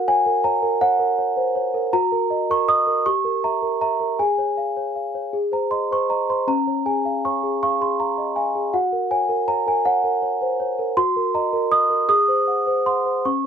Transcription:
Already playing: F#4 A#4 F#5
0.08 C#5 G#5
0.26 A#4
0.44 C#5 A#5
0.63 A#4
0.81 C#5 F#5
0.99 A#4
1.18 C#5
1.37 C5
1.55 C#5
1.74 A#4
1.93 F#4 A#5
2.12 A#4
2.30 D#5
2.50 A#4 C#6
2.68 D#5 D#6
2.87 A#4
3.06 G4 C#6
3.25 A#4
3.44 E5 A#5
3.62 A#4
3.81 E5 A#5
4.00 A#4
4.19 G#4 G#5
4.38 C#5
4.57 F5
4.77 C#5
4.96 F5
5.15 C#5
5.33 G#4
5.52 C5 A#5
5.71 D#5 C6
5.91 C5 C#6
6.09 D#5 A#5
6.29 C5 C6
6.48 C#4 A#5
6.67 C#5
6.86 G#4 G#5
7.05 F5
7.25 C#5 C#6
7.43 G#4
7.63 F5 C#6
7.81 G#4 C6
8.00 F5 A#5
8.18 D#5
8.36 F5 G#5
8.55 G#4
8.74 F#4 F#5
8.92 A#4
9.11 C#5 G#5
9.29 A#4
9.48 C#5 A#5
9.67 A#4 G#5
9.85 C#5 F#5
10.04 A#4
10.22 C#5
10.41 C5
10.60 C#5
10.79 A#4
10.97 F#4 C6
11.16 A#4
11.35 D#5 A#5
11.53 A#4
11.71 D#5 D#6
11.90 A#4
12.09 G#4 D#6
12.28 C5
12.47 F#5
12.67 C5
12.86 F#5 C6
13.06 C5
13.25 C#4 C#6

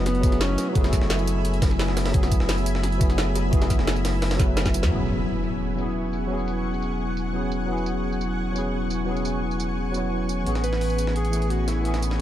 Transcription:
Already playing: F#1 F#3 A3 B3 E4 G#4 E5 G#5 B5
0.06 B3, snare, closed hi-hat
0.15 closed hi-hat
0.20 F#3 A3 B3, kick, closed hi-hat, tambourine
0.25 E4 G#4
0.32 snare, closed hi-hat
0.41 C#4, snare, closed hi-hat
0.58 snare, closed hi-hat, tambourine
0.69 F#3 B3
0.74 F#1 A3 B3 E4, kick, closed hi-hat
0.79 G#4
0.84 snare, tambourine
0.93 G#1, kick, snare, closed hi-hat, tambourine
1.01 F#1, snare
1.10 snare, closed hi-hat
1.19 tambourine
1.27 closed hi-hat, tambourine
1.45 closed hi-hat
1.54 closed hi-hat
1.62 kick, snare, closed hi-hat, open hi-hat, tambourine
1.71 snare
1.78 F#3 A3 B3 E4 G#4, snare, closed hi-hat, open hi-hat
1.88 snare
1.97 snare, closed hi-hat, open hi-hat, tambourine
2.06 snare, open hi-hat
2.11 F#1 F#3 A3 B3, kick, closed hi-hat
2.16 E4 G#4
2.23 snare, tambourine
2.32 G#1, kick, closed hi-hat, tambourine
2.40 F#1, snare
2.49 snare, closed hi-hat, open hi-hat
2.58 tambourine
2.66 closed hi-hat, tambourine
2.75 snare
2.83 snare, closed hi-hat
2.92 closed hi-hat
2.98 F#3 A3 B3, kick, closed hi-hat, tambourine
3.02 E4 G#4
3.10 snare, closed hi-hat
3.18 snare, closed hi-hat
3.35 snare, closed hi-hat, tambourine
3.50 F#1 F#3 A3 B3, kick, closed hi-hat
3.54 E4 G#4
3.62 snare, tambourine
3.70 G#1, kick, snare, closed hi-hat, tambourine
3.79 F#1, snare
3.87 snare, closed hi-hat
3.96 tambourine
4.05 snare, closed hi-hat, open hi-hat, tambourine
4.22 snare, closed hi-hat, open hi-hat
4.31 snare, open hi-hat, tambourine
4.36 F#3 A3 B3, kick, snare, closed hi-hat, tambourine
4.41 E4 B4
4.57 snare, closed hi-hat
4.66 kick, snare, tambourine
4.74 closed hi-hat, tambourine
4.83 F#2, snare
4.88 E1 F#3 B3 C#4 F#5 G#5 C#6, impact
4.93 E4 G#4
5.00 tambourine
5.09 tambourine
5.35 tambourine
5.44 tambourine
5.75 F#3 B3 C#4, tambourine
5.80 E4 G#4
6.13 tambourine
6.27 F#3 B3 C#4
6.32 E4 G#4
6.39 tambourine
6.48 tambourine
6.74 tambourine
6.82 tambourine
7.17 tambourine
7.33 F#3 B3 C#4 E4 G#4
7.52 tambourine
7.66 F#3 B3 C#4
7.71 E4 G#4
7.78 tambourine
7.86 tambourine
8.12 tambourine
8.21 tambourine
8.52 F#3 B3 C#4, tambourine
8.57 E4 G#4
8.90 tambourine
9.04 F#3 B3 C#4
9.09 E4 G#4
9.16 tambourine
9.25 tambourine
9.51 tambourine
9.60 tambourine
9.91 F#3 B3 C#4, tambourine
9.96 E4 C#5
10.29 tambourine
10.43 A1 E3 A3 B3 B5, closed hi-hat
10.48 C#4 G#4
10.55 snare, tambourine
10.64 B4, closed hi-hat, tambourine
10.73 snare
10.81 open hi-hat
10.90 tambourine
10.98 closed hi-hat, tambourine
11.07 snare
11.16 G#4, closed hi-hat
11.25 closed hi-hat
11.30 E3 A3 B3, closed hi-hat, tambourine
11.35 C#4 G#4
11.42 closed hi-hat
11.50 F#4, closed hi-hat
11.68 E4, snare, closed hi-hat, tambourine
11.82 E3 A3 B3, closed hi-hat
11.87 C#4 G#4
11.94 snare, tambourine
12.02 closed hi-hat, tambourine
12.11 snare

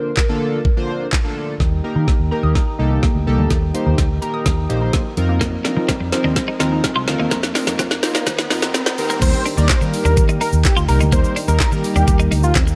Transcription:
Already playing: D3 A#3 D4 F4 A#4 C5
0.17 kick, snare, clap
0.29 D3 A#3 D4 F4 A4
0.65 kick
0.77 D3 A#3 D4 F4 C5
1.13 kick, snare, clap
1.24 D3 A#3 D4 F4 A4
1.60 D#2 D#3 D#4 G4 A#4, kick, snare, riser
1.72 G3
1.84 A#3 D#4 G4 A#4
1.96 D#3 D#4
2.08 D#5, kick, snare
2.20 D#2
2.31 A#3 D#4 G4 A#4 A#5
2.43 D#2 D#6
2.55 A#5, kick, snare
2.79 C2 A#3 D#4 G4 A4 D#5
2.91 D#4
3.03 A#3, kick, snare
3.15 D2
3.27 C2 A#3 D#4 G4 A4
3.38 D2 G3
3.50 D#3, kick, snare, closed hi-hat
3.62 G3
3.74 A#3 D#4 G4 C5, closed hi-hat
3.86 D#2 D#4
3.98 D#5, kick, snare, closed hi-hat
4.22 A#3 D#4 G4 A#4 A#5, closed hi-hat
4.34 D#6
4.46 D#2 A#5, kick, snare, closed hi-hat
4.69 A#1 A#3 D#4 G4 C5 D#5, closed hi-hat
4.81 D#4
4.93 A#3, kick, snare, closed hi-hat
5.17 F2 F3 C4 D#4 F4 A#4, closed hi-hat
5.29 A#3
5.41 F3 A#3, kick, snare, closed hi-hat
5.53 A#3
5.65 C4 D4 D#4 F4 A#4, snare, closed hi-hat
5.77 F3 D#4, muted clean electric guitar stroke
5.89 C4 F4, kick, snare, closed hi-hat
6.00 F2, muted clean electric guitar stroke
6.12 C4 D#4 F4 A#4 C5, snare, closed hi-hat
6.24 D#2 D4 D#5
6.36 C5, muted clean electric guitar stroke, kick, snare, closed hi-hat
6.48 D#4
6.60 D#2 C4 D#4 F4 A#4, snare, closed hi-hat
6.72 D#4
6.84 C4, kick, snare, closed hi-hat
6.96 C2 F4
7.07 D2 C4 D#4 F4 A#4, muted clean electric guitar stroke, snare, closed hi-hat
7.20 D#2 A#3 D#4
7.31 F2 F3 A#3, kick, snare, closed hi-hat, shaker
7.43 A#3, snare, shaker
7.55 C4 D4 D#4 F4 A#4, snare, open hi-hat, shaker
7.67 F2 D#4, muted clean electric guitar stroke, snare, shaker
7.79 F2 C4 F4, kick, snare, closed hi-hat, shaker
7.91 muted clean electric guitar stroke, snare, shaker
8.03 C4 D#4 F4 A#4 C5, snare, open hi-hat, shaker
8.15 D4 D#5, snare, shaker
8.27 D#2 C5, muted clean electric guitar stroke, kick, snare, closed hi-hat, shaker
8.39 D#4, snare, shaker
8.50 F2 C4 D#4 F4 A#4, snare, open hi-hat, shaker
8.62 D#4, snare, shaker
8.74 C4, snare, closed hi-hat, shaker
8.86 muted clean electric guitar stroke, snare, shaker
8.98 D#2 D#3 A#3 D#4 G4 A#4, open hi-hat, shaker
9.10 G3 A#3, shaker
9.22 D#2 D#3 G3 A#3 D#4 G4 A#4 C5, kick, closed hi-hat, crash, shaker
9.34 shaker
9.46 D4, open hi-hat, shaker
9.58 D#2 G3 A#3 D#4 G4 A#4 D5, muted clean electric guitar stroke, shaker
9.69 C4 C5, muted fingered electric bass stroke, kick, snare, clap, closed hi-hat, shaker
9.81 D#3 G3 A#3 D#4 G4 A#4, muted clean electric guitar stroke, shaker
9.94 open hi-hat, shaker
10.05 D#2 D4 A#4, shaker
10.17 D#3, muted clean electric guitar stroke, kick, closed hi-hat, shaker
10.29 D#4, shaker
10.41 D#4 A#4, open hi-hat, shaker
10.53 D#2, shaker
10.65 G4, kick, snare, clap, closed hi-hat, shaker
10.77 D2 F4, shaker
10.88 C2 G3 A#3 D#4 G4 A#4, muted clean electric guitar stroke, open hi-hat, shaker
11.01 D2 D#4, shaker
11.12 D#2 G3 A#3 D#4 G4 A#4 C5, kick, closed hi-hat, shaker
11.24 shaker
11.36 D4, open hi-hat, shaker
11.48 D#2 G3 A#3 D#4 G4 A#4, muted clean electric guitar stroke, shaker
11.60 C4 A#4, muted fingered electric bass stroke, kick, snare, clap, closed hi-hat, shaker
11.72 D#3 G3 A#3 D#4 G4 A#4, muted clean electric guitar stroke, shaker
11.84 open hi-hat, shaker
11.96 D#2 D4 G4, shaker
12.08 D#2 G4, muted clean electric guitar stroke, kick, closed hi-hat, shaker
12.20 D#4, shaker
12.31 D2 D#4, open hi-hat, shaker
12.43 F4, shaker
12.55 C4, kick, snare, clap, closed hi-hat, shaker
12.67 muted clean electric guitar stroke, shaker

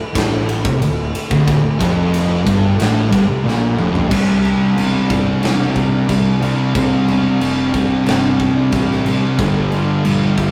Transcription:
Already playing: D3 A3 E4
0.14 A1 A2, kick, snare, ride
0.49 ride
0.64 C2 C3, kick
0.81 D1 D2, ride
1.15 ride
1.30 D1 D2, kick
1.48 kick, ride
1.63 D1 D2
1.81 F1 F2, kick, ride
2.14 ride
2.46 G1 G2, kick, ride
2.79 A1 A2, snare, ride
3.11 G1 G2, kick, ride
3.28 C2 C3
3.44 A#1 A#2
3.48 snare
3.77 F1 F2, mid tom
3.95 floor tom
4.10 C2 C3 G3 C4 D4, kick, crash
4.45 crash
4.76 E1 C3 G3 C4, crash
5.09 G1 C3 G3 C4, kick, crash
5.42 E1 C3 G3 C4, snare, crash
5.75 kick, crash
6.07 C2 C3 G3 C4, kick, crash
6.41 C3 G3 C4, crash
6.74 C2 C3 G3 C4, kick, crash
7.08 E1, crash
7.40 F1 C3 G3 C4, crash
7.73 C3 G3 C4, kick, crash
8.06 G1 C3 G3 C4, snare, crash
8.39 kick, crash
8.72 A1 C3 G3 C4, kick, crash
8.91 snare
9.06 C3 G3 C4, crash
9.39 G1 G2 D3 G3 A4, kick, crash
9.72 crash
10.04 A#1 G2 D3 G3, crash
10.37 D2 G2 D3 G3, kick, crash

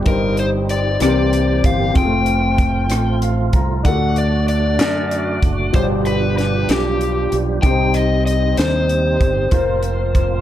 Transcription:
Already playing: G3
0.05 G1 G2 C4 D#4 G4 A#4 C5, kick, closed hi-hat
0.37 C5, closed hi-hat
0.69 D5, closed hi-hat
1.00 C2 C3 E3 A#3 C4 G4 A#4 D5, cross-stick, closed hi-hat
1.09 C5
1.33 closed hi-hat
1.64 G1 F5, kick, closed hi-hat
1.94 F1 F3 A3 C4 F4 G5, kick, closed hi-hat
1.98 G#4
2.05 A3
2.26 closed hi-hat
2.58 kick, closed hi-hat
2.90 A1, cross-stick, closed hi-hat
3.22 F5, closed hi-hat
3.53 C2 A#5, kick, closed hi-hat
3.83 D2 D3 F#3 A3 D4 F4 F#4 F#5, kick, closed hi-hat
3.88 F#4 A4
4.16 D5, closed hi-hat
4.48 D5, closed hi-hat
4.79 F#2, snare, closed hi-hat
5.11 closed hi-hat
5.42 F#1, kick, closed hi-hat
5.73 G1 G2 B2 F3 G3 D4 F4 G4 C5, kick, closed hi-hat
5.77 C#5
5.83 D5
6.06 B4, closed hi-hat
6.38 B4, snare, closed hi-hat
6.69 B1 G4, snare, closed hi-hat
7.01 closed hi-hat
7.32 B1, closed hi-hat
7.62 C2 C3 C4 D4 D#4 G4 G5, kick, closed hi-hat
7.66 D#4 C5
7.94 D#5, closed hi-hat
8.26 D#5, closed hi-hat
8.57 D#2 C5, snare, closed hi-hat
8.89 closed hi-hat
9.21 G1, kick, closed hi-hat
9.51 F1 F3 A#3 F4 A#4 C5, kick, closed hi-hat
9.83 closed hi-hat
10.15 kick, closed hi-hat

